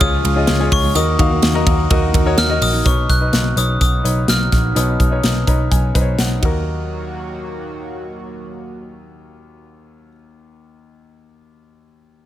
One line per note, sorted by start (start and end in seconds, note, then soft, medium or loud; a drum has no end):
0.00 0.20 C#2 loud
0.00 0.91 C#3 medium
0.00 0.98 C#3 medium
0.00 0.22 F3 medium
0.00 0.93 F3 medium
0.00 0.23 G#3 medium
0.00 0.93 G#3 medium
0.00 0.24 C#4 medium
0.00 0.36 C#4 medium
0.00 0.24 F4 medium
0.00 0.36 F4 medium
0.00 0.93 F4 medium
0.00 0.37 G#4 medium
0.00 0.61 C#5 medium
0.00 0.45 D#6 medium
0.00 kick loud
0.00 ride medium
0.23 0.44 C#2 loud
0.23 0.46 F3 medium
0.23 0.47 G#3 medium
0.23 0.48 C#4 medium
0.23 0.48 F4 medium
0.23 ride medium
0.36 0.58 C#4 medium
0.36 0.58 F4 medium
0.36 0.58 G#4 medium
0.36 0.58 D#5 medium
0.47 0.68 C#2 loud
0.47 0.83 F3 medium
0.47 0.84 G#3 medium
0.47 0.83 C#4 medium
0.47 0.82 F4 medium
0.47 snare loud
0.47 ride medium
0.59 0.92 C#4 medium
0.59 0.93 F4 medium
0.59 0.93 G#4 medium
0.59 0.93 C#5 medium
0.72 0.91 C#2 loud
0.72 0.97 C#6 loud
0.72 kick loud
0.72 open hi-hat medium
0.72 ride medium
0.83 0.95 G#3 medium
0.83 0.95 C#4 medium
0.83 0.95 F4 medium
0.95 1.15 D#2 loud
0.95 1.31 D#3 medium
0.95 2.84 D#3 medium
0.95 1.63 D#3 medium
0.95 2.84 F#3 medium
0.95 1.31 A#3 medium
0.95 2.84 A#3 medium
0.95 1.17 D#4 medium
0.95 1.30 D#4 medium
0.95 1.17 F#4 medium
0.95 2.84 F#4 medium
0.95 1.29 F#4 loud
0.95 1.17 A#4 medium
0.95 1.17 D#5 medium
0.95 2.34 D#6 loud
0.95 hi-hat pedal medium
0.95 ride medium
1.18 1.39 D#2 loud
1.18 1.51 D#4 medium
1.18 1.52 F#4 medium
1.18 1.52 A#4 medium
1.18 1.52 F5 medium
1.18 kick loud
1.18 ride medium
1.30 1.65 A#3 medium
1.30 1.66 D#4 medium
1.30 1.66 F#4 medium
1.43 1.62 D#2 medium
1.43 snare loud
1.43 ride medium
1.54 1.87 D#4 medium
1.54 1.87 F#4 medium
1.54 1.88 A#4 medium
1.54 1.88 D#5 loud
1.65 1.86 D#2 loud
1.65 2.13 D#3 medium
1.65 2.13 A#3 medium
1.65 2.15 D#4 medium
1.65 2.15 F#4 medium
1.65 kick loud
1.65 ride medium
1.90 2.10 D#2 loud
1.90 2.23 D#4 medium
1.90 2.23 F#4 medium
1.90 2.23 A#4 medium
1.90 2.23 D#5 loud
1.90 kick loud
1.90 ride medium
2.13 2.34 D#2 loud
2.13 2.36 D#3 medium
2.13 2.37 A#3 medium
2.13 2.37 D#4 medium
2.13 2.38 F#4 medium
2.13 kick loud
2.13 ride medium
2.26 2.48 D#4 medium
2.26 2.48 F#4 medium
2.26 2.48 A#4 medium
2.26 2.48 C#5 loud
2.37 2.57 D#2 loud
2.37 2.73 D#3 medium
2.37 2.74 A#3 medium
2.37 2.73 D#4 medium
2.37 2.71 F#4 medium
2.37 2.63 F6 loud
2.37 snare loud
2.37 ride medium
2.49 2.82 D#4 medium
2.49 2.82 F#4 medium
2.49 2.83 A#4 medium
2.49 2.83 D#5 loud
2.61 2.81 A#1 medium
2.61 2.87 D#6 loud
2.61 open hi-hat medium
2.61 ride medium
2.73 2.86 A#3 medium
2.73 2.86 D#4 medium
2.73 2.85 F#4 medium
2.85 3.05 B1 medium
2.85 3.53 B2 medium
2.85 6.39 C#3 medium
2.85 6.39 F#3 medium
2.85 6.39 B3 medium
2.85 3.18 D#4 medium
2.85 6.39 D#4 medium
2.85 3.18 B4 medium
2.85 3.18 C#5 medium
2.85 3.08 C#6 medium
2.85 kick loud
2.85 closed hi-hat medium
3.10 3.29 B1 medium
3.10 3.59 F#6 medium
3.10 kick medium
3.10 closed hi-hat medium
3.21 3.54 D#4 medium
3.21 3.54 B4 medium
3.21 3.54 D#5 medium
3.33 3.52 B1 medium
3.33 snare medium
3.33 closed hi-hat medium
3.56 3.76 B1 medium
3.56 4.00 D#4 medium
3.56 4.00 B4 medium
3.56 4.01 C#5 medium
3.56 3.80 D#6 medium
3.56 closed hi-hat medium
3.81 4.00 B1 medium
3.81 4.30 D#6 medium
3.81 kick medium
3.81 closed hi-hat medium
4.04 4.24 B1 medium
4.04 4.69 D#4 medium
4.04 4.70 B4 medium
4.04 4.70 C#5 medium
4.04 closed hi-hat medium
4.28 4.48 B1 medium
4.28 4.78 F6 medium
4.28 snare medium
4.28 closed hi-hat medium
4.52 4.72 A#1 medium
4.52 kick medium
4.52 snare soft
4.52 closed hi-hat medium
4.75 4.96 B1 medium
4.75 5.43 B2 medium
4.75 5.08 D#4 medium
4.75 5.08 B4 medium
4.75 5.09 C#5 medium
4.75 6.16 D#6 medium
4.75 closed hi-hat medium
5.00 5.19 B1 medium
5.00 kick medium
5.00 closed hi-hat medium
5.11 5.44 D#4 medium
5.11 5.44 B4 medium
5.11 5.45 C#5 medium
5.23 5.43 B1 medium
5.23 snare medium
5.23 closed hi-hat medium
5.47 5.67 B1 medium
5.47 5.91 D#4 medium
5.47 5.91 B4 medium
5.47 5.91 C#5 medium
5.47 5.70 A#5 soft
5.47 kick medium
5.47 closed hi-hat medium
5.71 5.91 B1 medium
5.71 6.16 G#5 medium
5.71 kick medium
5.71 closed hi-hat medium
5.94 6.15 B1 medium
5.94 6.39 D#4 medium
5.94 6.43 B4 medium
5.94 6.01 C5 medium
5.94 kick medium
5.94 closed hi-hat medium
6.01 6.46 C#5 medium
6.19 6.38 B1 medium
6.19 6.41 F#5 medium
6.19 snare medium
6.19 closed hi-hat medium
6.40 10.11 D#2 medium
6.40 10.12 D#3 medium
6.40 10.12 F#3 medium
6.40 10.12 A#3 medium
6.40 10.08 D#4 medium
6.40 10.11 F#4 medium
6.40 10.12 F#4 medium
6.40 kick medium
6.40 ride medium
6.45 10.13 A#4 medium